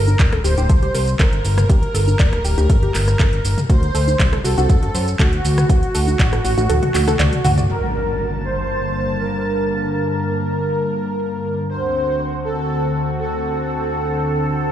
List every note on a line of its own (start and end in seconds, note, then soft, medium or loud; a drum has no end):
0.00 0.16 G1 medium
0.00 0.35 A#4 loud
0.08 closed hi-hat soft
0.08 high conga medium
0.08 shaker soft
0.19 0.41 D1 loud
0.19 0.26 D5 medium
0.19 kick loud
0.19 clap loud
0.19 closed hi-hat medium
0.19 shaker soft
0.33 0.38 A4 medium
0.33 cross-stick medium
0.33 closed hi-hat soft
0.44 0.56 D1 medium
0.44 0.48 G4 medium
0.44 1.10 C5 loud
0.44 open hi-hat medium
0.44 shaker medium
0.58 0.68 D1 medium
0.58 0.66 G4 medium
0.58 closed hi-hat soft
0.58 high conga medium
0.58 shaker soft
0.69 0.91 C2 medium
0.69 0.73 A4 medium
0.69 kick loud
0.69 closed hi-hat medium
0.69 shaker soft
0.83 0.88 G4 medium
0.83 closed hi-hat soft
0.94 1.16 C2 medium
0.94 1.01 A#4 medium
0.94 open hi-hat loud
0.94 shaker medium
1.08 closed hi-hat soft
1.08 shaker soft
1.19 1.41 G1 medium
1.19 1.23 A4 medium
1.19 3.60 A#4 loud
1.19 kick loud
1.19 clap loud
1.19 closed hi-hat medium
1.19 shaker soft
1.33 closed hi-hat soft
1.45 1.66 G1 medium
1.45 open hi-hat medium
1.45 shaker medium
1.58 cross-stick medium
1.58 closed hi-hat soft
1.58 mid tom medium
1.58 shaker soft
1.69 1.81 G1 medium
1.69 1.73 G4 medium
1.69 kick loud
1.69 closed hi-hat medium
1.69 shaker soft
1.83 closed hi-hat soft
1.94 2.16 G1 medium
1.94 2.01 A4 medium
1.94 open hi-hat loud
1.94 shaker medium
2.08 closed hi-hat soft
2.08 high conga medium
2.08 shaker soft
2.20 2.41 D1 loud
2.20 2.26 D5 medium
2.20 kick loud
2.20 clap loud
2.20 closed hi-hat medium
2.20 shaker soft
2.33 2.38 A4 medium
2.33 cross-stick medium
2.33 closed hi-hat soft
2.44 2.55 D1 medium
2.44 2.48 G4 medium
2.44 open hi-hat medium
2.44 shaker medium
2.58 2.68 D1 loud
2.58 2.66 G4 medium
2.58 closed hi-hat soft
2.58 high conga medium
2.58 shaker soft
2.70 2.91 G1 medium
2.70 2.73 A4 medium
2.70 kick loud
2.70 closed hi-hat medium
2.70 shaker soft
2.83 2.88 G4 medium
2.83 closed hi-hat soft
2.95 3.16 G1 loud
2.95 3.01 A#4 medium
2.95 clap medium
2.95 open hi-hat loud
2.95 shaker medium
3.08 cross-stick medium
3.08 closed hi-hat soft
3.08 shaker soft
3.20 3.41 G1 medium
3.20 3.23 A4 medium
3.20 kick loud
3.20 clap loud
3.20 closed hi-hat medium
3.20 shaker soft
3.33 closed hi-hat soft
3.45 3.56 G1 medium
3.45 open hi-hat medium
3.45 shaker medium
3.58 closed hi-hat soft
3.58 mid tom medium
3.58 shaker soft
3.70 3.91 D2 loud
3.70 3.73 F#4 medium
3.70 4.35 C5 loud
3.70 kick loud
3.70 closed hi-hat loud
3.70 shaker soft
3.83 closed hi-hat soft
3.94 4.16 D2 medium
3.94 4.01 A4 medium
3.94 open hi-hat loud
3.94 shaker medium
4.08 closed hi-hat soft
4.08 high conga medium
4.08 shaker soft
4.20 4.41 C2 medium
4.20 4.26 D5 medium
4.20 kick loud
4.20 clap loud
4.20 closed hi-hat medium
4.20 shaker soft
4.33 4.38 A4 medium
4.33 cross-stick medium
4.33 closed hi-hat soft
4.44 4.55 C2 medium
4.44 4.48 F#4 medium
4.44 5.10 A4 loud
4.44 open hi-hat medium
4.44 shaker medium
4.58 4.68 C2 medium
4.58 4.66 F#4 medium
4.58 closed hi-hat soft
4.58 high conga medium
4.58 shaker soft
4.69 4.91 F#2 medium
4.69 4.73 A4 medium
4.69 kick loud
4.69 closed hi-hat medium
4.69 shaker soft
4.83 4.88 F#4 medium
4.83 closed hi-hat soft
4.94 5.16 F#2 loud
4.94 5.01 C5 medium
4.94 open hi-hat loud
4.94 shaker medium
5.08 closed hi-hat soft
5.08 shaker soft
5.19 5.41 D2 medium
5.19 7.60 F#4 loud
5.19 5.23 A4 medium
5.19 kick loud
5.19 clap loud
5.19 closed hi-hat medium
5.19 shaker soft
5.33 closed hi-hat soft
5.44 5.66 D2 medium
5.44 open hi-hat medium
5.44 shaker medium
5.58 cross-stick medium
5.58 closed hi-hat soft
5.58 mid tom medium
5.58 shaker soft
5.69 5.81 D2 loud
5.69 5.73 F#4 medium
5.69 kick loud
5.69 closed hi-hat medium
5.69 shaker soft
5.83 closed hi-hat soft
5.94 6.16 D2 medium
5.94 6.01 A4 medium
5.94 open hi-hat loud
5.94 shaker medium
6.08 closed hi-hat soft
6.08 high conga medium
6.08 shaker soft
6.19 6.41 A1 loud
6.19 6.26 D5 medium
6.19 kick loud
6.19 clap loud
6.19 closed hi-hat loud
6.19 shaker soft
6.33 6.38 A4 medium
6.33 cross-stick medium
6.33 closed hi-hat soft
6.44 6.56 A1 medium
6.44 6.48 F#4 medium
6.44 open hi-hat medium
6.44 shaker medium
6.58 6.68 A1 loud
6.58 6.66 F#4 medium
6.58 closed hi-hat soft
6.58 high conga medium
6.58 shaker soft
6.69 6.81 D2 medium
6.69 6.73 A4 medium
6.69 closed hi-hat medium
6.69 high tom medium
6.69 shaker soft
6.83 6.88 F#4 medium
6.83 closed hi-hat soft
6.83 mid tom medium
6.83 high tom medium
6.95 7.16 D2 medium
6.95 7.01 F#4 medium
6.95 clap medium
6.95 open hi-hat loud
6.95 shaker medium
7.08 7.13 A4 loud
7.08 cross-stick medium
7.08 closed hi-hat soft
7.08 mid tom medium
7.08 high conga medium
7.08 shaker soft
7.19 7.31 D2 loud
7.19 7.26 D5 medium
7.19 clap loud
7.19 closed hi-hat medium
7.19 mid tom medium
7.19 shaker soft
7.33 closed hi-hat soft
7.33 mid tom medium
7.44 7.66 D2 medium
7.44 7.51 F#4 loud
7.44 mid tom loud
7.44 open hi-hat medium
7.44 shaker medium
7.58 7.63 D5 medium
7.58 closed hi-hat soft
7.58 mid tom medium
7.58 shaker soft
7.69 11.66 G2 medium
7.69 11.66 D3 medium
7.69 11.66 A#3 medium
7.69 8.35 A#4 loud
7.69 11.66 A5 medium
7.69 impact medium
7.95 closed hi-hat medium
8.20 closed hi-hat medium
8.44 9.10 C5 medium
8.44 closed hi-hat medium
8.70 closed hi-hat medium
9.20 11.60 A#4 loud
9.20 closed hi-hat medium
9.70 closed hi-hat medium
9.83 closed hi-hat soft
9.95 closed hi-hat medium
10.20 closed hi-hat medium
10.45 closed hi-hat medium
10.58 closed hi-hat soft
10.70 closed hi-hat medium
10.83 closed hi-hat soft
10.95 closed hi-hat soft
11.08 closed hi-hat soft
11.20 closed hi-hat medium
11.33 closed hi-hat soft
11.45 closed hi-hat medium
11.58 closed hi-hat soft
11.69 14.72 D2 medium
11.69 14.72 D3 medium
11.69 14.72 C4 medium
11.69 14.72 F#4 medium
11.69 12.35 C5 loud
11.69 closed hi-hat medium
11.83 closed hi-hat soft
11.95 closed hi-hat medium
12.08 closed hi-hat soft
12.20 closed hi-hat medium
12.33 closed hi-hat soft
12.45 13.10 A4 loud
12.45 closed hi-hat medium
12.58 closed hi-hat soft
12.70 closed hi-hat medium
12.83 closed hi-hat soft
12.95 closed hi-hat soft
13.08 closed hi-hat soft
13.20 14.72 A4 loud
13.20 closed hi-hat medium
13.33 closed hi-hat soft
13.45 closed hi-hat medium
13.58 closed hi-hat soft
13.70 closed hi-hat medium
13.83 closed hi-hat soft
13.95 closed hi-hat medium
14.08 closed hi-hat soft
14.20 closed hi-hat medium
14.33 closed hi-hat soft
14.45 closed hi-hat medium
14.58 closed hi-hat soft